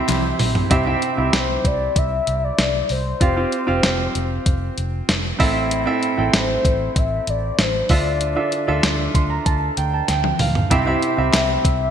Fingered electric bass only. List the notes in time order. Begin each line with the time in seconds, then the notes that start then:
0.09 C2
0.40 A#1
0.71 C2
1.18 C2
1.65 C2
1.96 C2
2.27 C2
2.58 C2
2.90 C2
3.21 F1
3.68 F1
3.84 F1
4.15 F1
4.46 F1
4.78 F1
5.09 F1
5.40 A1
6.18 A1
6.34 A1
6.65 A1
6.96 A1
7.27 A1
7.59 A1
7.90 D2
8.68 D2
8.84 D2
9.15 D2
9.46 D2
9.77 D2
10.09 D2
10.40 D2
10.71 C2
11.18 C2
11.34 C2
11.65 C2